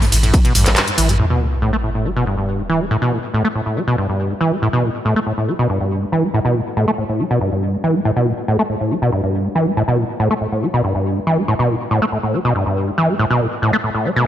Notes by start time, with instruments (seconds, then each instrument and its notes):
0.02 acid bass A3, mid tom, open hi-hat
0.12 sub bass A1, acid bass A2, open hi-hat, ride
0.23 sub bass A1, acid bass A2, closed hi-hat, mid tom
0.33 acid bass A3, kick, closed hi-hat, ride
0.45 acid bass B2, closed hi-hat
0.55 sub bass A1, acid bass G2, mid tom, open hi-hat, ride
0.66 sub bass A1, acid bass G2, clap, closed hi-hat
0.76 clap, closed hi-hat, mid tom, ride
0.87 acid bass A2, closed hi-hat
0.98 sub bass A1, acid bass E3, open hi-hat, ride
1.09 sub bass A1, acid bass A3, closed hi-hat, mid tom
1.19 acid bass A2, sub drop
1.30 acid bass B2
1.40 acid bass A2
1.62 acid bass A2
1.73 acid bass A3
1.84 acid bass A2
1.95 acid bass A2
2.05 acid bass A3
2.16 acid bass B2
2.27 acid bass G2
2.38 acid bass G2
2.59 acid bass A2
2.69 acid bass E3
2.80 acid bass A3
2.91 acid bass A2
3.02 acid bass B2
3.12 acid bass A2
3.34 acid bass A2
3.45 acid bass A3
3.55 acid bass A2
3.66 acid bass A2
3.76 acid bass A3
3.87 acid bass B2
3.98 acid bass G2
4.09 acid bass G2
4.30 acid bass A2
4.41 acid bass E3
4.52 acid bass A3
4.62 acid bass A2
4.73 acid bass B2
4.84 acid bass A2
5.05 acid bass A2
5.16 acid bass A3
5.26 acid bass A2
5.38 acid bass A2
5.48 acid bass A3
5.59 acid bass B2
5.69 acid bass G2
5.80 acid bass G2
6.02 acid bass A2
6.12 acid bass E3
6.23 acid bass A3
6.34 acid bass A2
6.45 acid bass B2
6.55 acid bass A2
6.77 acid bass A2
6.88 acid bass A3
6.98 acid bass A2
7.09 acid bass A2
7.20 acid bass A3
7.31 acid bass B2
7.41 acid bass G2
7.52 acid bass G2
7.73 acid bass A2
7.84 acid bass E3
7.95 acid bass A3
8.05 acid bass A2
8.16 acid bass B2
8.27 acid bass A2
8.48 acid bass A2
8.59 acid bass A3
8.70 acid bass A2
8.81 acid bass A2
8.91 acid bass A3
9.02 acid bass B2
9.12 acid bass G2
9.24 acid bass G2
9.45 acid bass A2
9.55 acid bass E3
9.66 acid bass A3
9.77 acid bass A2
9.88 acid bass B2
9.98 acid bass A2
10.20 acid bass A2
10.31 acid bass A3
10.41 acid bass A2
10.52 acid bass A2
10.63 acid bass A3
10.74 acid bass B2
10.84 acid bass G2
10.95 acid bass G2
11.16 acid bass A2
11.27 acid bass E3
11.38 acid bass A3
11.48 acid bass A2
11.59 acid bass B2
11.70 acid bass A2
11.91 acid bass A2
12.02 acid bass A3
12.12 acid bass A2
12.23 acid bass A2
12.34 acid bass A3
12.45 acid bass B2
12.55 acid bass G2
12.66 acid bass G2
12.88 acid bass A2
12.98 acid bass E3
13.09 acid bass A3
13.19 acid bass A2
13.30 acid bass B2
13.41 acid bass A2
13.62 acid bass A2
13.73 acid bass A3
13.84 acid bass A2
13.95 acid bass A2
14.05 acid bass A3, swell
14.16 acid bass B2